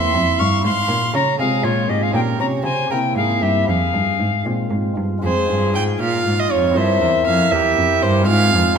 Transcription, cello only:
Already playing: E2
0.15 F2
0.40 G2
0.65 G#2
0.89 A#2
1.13 C#3
1.39 C3
1.64 A#2
1.89 G#2
2.14 A#2
2.39 C3
2.63 C#3
2.89 C3
3.15 G#2
3.41 G2
3.67 F2
3.93 G2
4.19 G#2
4.46 A#2
4.71 G#2
4.97 G2
5.23 F2
5.49 G2
5.75 G#2
6.00 A#2
6.25 G#2
6.51 F2
6.76 G2
7.01 E2
7.27 F2
7.52 E2
7.77 F2
8.02 G2
8.27 G#2
8.53 F2

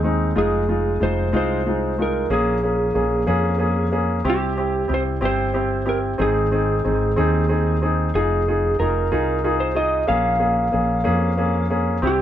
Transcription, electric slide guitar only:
0.38 G#4
1.03 C5
1.37 C5
2.02 A#4
2.33 G#4
4.30 G4
4.94 C5
5.25 C5
5.89 A#4
6.22 G#4
8.15 G#4
8.80 A#4
9.60 C5
9.76 D#5
10.08 F5
12.07 G4

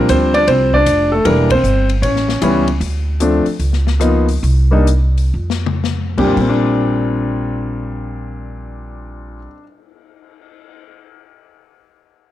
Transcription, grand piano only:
Already playing: F3 G3 D4
0.10 C4 C5
0.34 D4 D5
0.48 C4 C5
0.74 D4 D5
1.12 A3 A4
1.25 E3 G3 A#3 D4 A#4
1.51 C4 C5
2.02 C#4 C#5
2.42 E3 G3 B3 C#4
3.20 F3 A3 C4 D4
4.00 F3 A#3 B3 D#4
4.71 G3 A#3 D4 D#4
6.17 A#2 G3 C4 D4 G4
6.24 A#2
6.33 G3
6.41 C4
6.49 D4

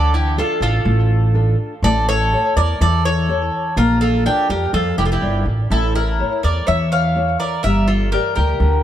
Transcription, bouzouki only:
Already playing: D5
0.15 G4
0.39 A4
0.63 A4
1.84 D5
2.09 C#5
2.57 D5
2.82 D5
3.05 C#5
3.78 A#4
4.01 A4
4.26 G4
4.50 A#4
4.74 A4
4.98 G4
5.05 A4
5.12 G4
5.72 A4
5.95 A#4
6.44 D5
6.68 E5
6.92 F5
7.40 D5
7.64 E5
7.88 A4
8.12 A#4
8.35 A#4

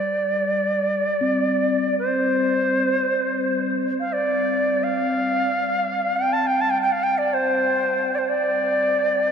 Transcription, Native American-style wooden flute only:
Already playing: D5
1.99 C5
4.00 F5
4.13 D5
4.84 F5
6.16 G5
6.33 A5
6.47 G5
6.61 A5
6.70 G5
6.81 G5
6.92 F5
7.03 G5
7.18 D5
7.34 C5
8.15 C5 D5
8.29 D5

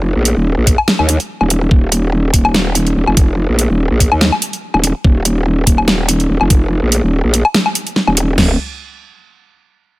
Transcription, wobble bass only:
Already playing: F1
0.16 A#1
0.37 D#1
0.57 A#1
0.99 D#2
1.41 D#1
1.71 D#1
2.34 D#1
2.96 D#1
3.07 F1
3.49 A#1
3.70 D#1
3.91 A#1
4.12 D#2
4.74 D#1
5.04 D#1
5.67 D#1
6.29 D#1
6.41 F1
6.82 A#1
7.03 D#1
7.24 A#1
8.08 D#1
8.38 D#1

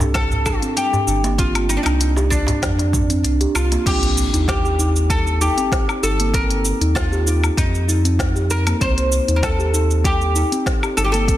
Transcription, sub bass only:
Already playing: C2
1.07 G1
1.86 C2
2.62 F2
3.24 C2
3.55 C2
3.86 C2
4.34 D#2
6.03 G1
6.81 D#2
7.57 F2
8.81 C2
9.28 D#2
10.97 G1

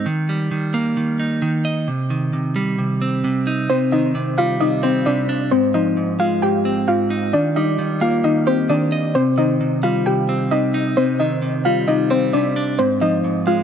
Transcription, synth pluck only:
3.70 C4 C5
3.92 D#4 D#5
4.38 F4 F5
4.60 D#4 D#5
4.83 C4 C5
5.06 D4 D5
5.51 C4 C5
5.74 D#4 D#5
6.20 F4 F5
6.42 G4 G5
6.88 F4 F5
7.33 D4 D5
7.56 D#4 D#5
8.01 F4 F5
8.24 D#4 D#5
8.47 C4 C5
8.70 D4 D5
9.15 C4 C5
9.38 D#4 D#5
9.83 F4 F5
10.06 G4 G5
10.51 D#4 D#5
10.97 C4 C5
11.20 D#4 D#5
11.65 F4 F5
11.88 D#4 D#5
12.11 C4 C5
12.33 D4 D5
12.79 C4 C5
13.01 D#4 D#5
13.47 F4 F5

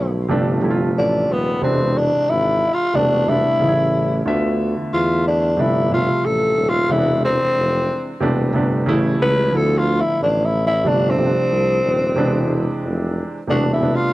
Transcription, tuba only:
Already playing: B1
0.30 G1
0.96 A1
1.30 D#1
1.62 E1
2.15 G#1
2.28 G#1
2.94 E1
3.47 A1
3.60 A1
4.26 D2
4.79 E2
4.93 E2
5.59 G1
6.11 A1
6.25 A1
6.57 D#1
6.90 E1
7.42 F1
7.56 F1
8.22 E1
8.55 G1
8.87 A1
9.21 C#2
9.54 D2
10.06 A1
10.20 A1
10.86 G1
11.38 C2
11.51 C2
11.85 D#1
12.17 E1
12.70 F1
12.83 F1
13.49 E1
14.01 A1

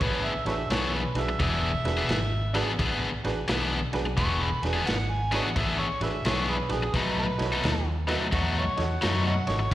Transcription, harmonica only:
0.02 B4
0.25 E5
0.47 A4 C#5 E5
0.70 F#4 A4 C#5
0.94 B4
1.18 E5
1.42 E5
4.18 C#6
4.41 B5
4.65 G#5
4.86 F#5
5.11 G#5
5.35 C#5 D#5 F#5
5.57 E5
5.79 C#5
6.03 E5
6.26 C#5
6.49 E4 G#4 B4
6.71 G#4
6.94 B4
7.19 B4
8.34 C#5 D#5 F#5
8.58 C#5
8.83 F#5
9.05 C#5
9.26 C#5 D#5 F#5
9.49 C#5

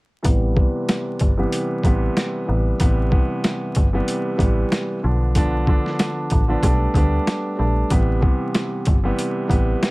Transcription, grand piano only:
0.23 C3 E3 G3 B3
0.55 C3 E3 G3 B3
1.37 C3 E3 G3 B3
1.85 C3 E3 G3 B3
2.46 C3 E3 G3 B3
2.79 C3 E3 G3 B3
3.10 C3 E3 G3 B3
3.93 C3 E3 G3 B3
4.37 C3 E3 G3 B3
5.03 D3 F3 B3 D4
5.35 D3 F3 B3 D4
5.67 D3 F3 B3 D4
6.48 D3 F3 B3 D4
6.63 G3 A3 B3 D4
6.95 G3 A3 B3 D4
7.57 G3 A3 B3 D4
7.90 C3 E3 G3 B3
8.21 C3 E3 G3 B3
9.04 C3 E3 G3 B3
9.48 C3 E3 G3 B3

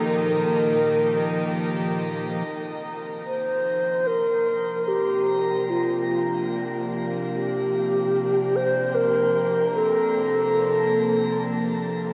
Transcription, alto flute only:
0.06 A#4
3.26 C5
4.07 A#4
4.88 G4
5.70 F4
7.33 G4
8.56 C5
8.95 A#4
9.76 A4

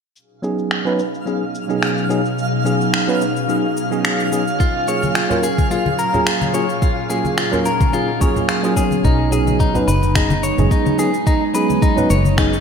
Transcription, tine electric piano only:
0.42 F#3 B3 C#4 D#4 G#4
0.85 F#3 B3 C#4 D#4 B4
1.26 F#3 B3 C#4 D#4 G#4
1.68 F#3 B3 C#4 D#4 G#4
2.09 F#3 B3 C#4 D#4 G#4
2.64 F#3 B3 C#4 D#4 G#4
3.07 F#3 B3 C#4 D#4 B4
3.48 F#3 B3 C#4 D#4 G#4
3.91 F#3 B3 C#4 D#4 G#4
4.31 F#3 B3 C#4 D#4 G#4
4.87 F#3 A#3 C#4 F4 G#4
5.30 F#3 A#3 C#4 F4 A#4
5.70 F#3 A#3 C#4 F4 G#4
6.13 F#3 A#3 C#4 F4 G#4
6.53 F#3 A#3 C#4 F4 G#4
7.09 F#3 A#3 C#4 F4 G#4
7.52 F#3 A#3 C#4 F4 A#4
7.92 F#3 A#3 C#4 F4 G#4
8.20 F#3 A#3 C#4 F4 G#4
8.63 F#3 A#3 C#4 F4 G#4
8.76 F#3 B3 C#4 D#4 G#4
9.31 F#3 B3 C#4 D#4 G#4
9.74 F#3 B3 C#4 D#4 B4
10.15 F#3 B3 C#4 D#4 G#4
10.58 F#3 B3 C#4 D#4 G#4
10.98 F#3 B3 C#4 D#4 G#4
11.54 F#3 B3 C#4 D#4 G#4
11.96 F#3 B3 C#4 D#4 B4
12.37 F#3 B3 C#4 D#4 G#4

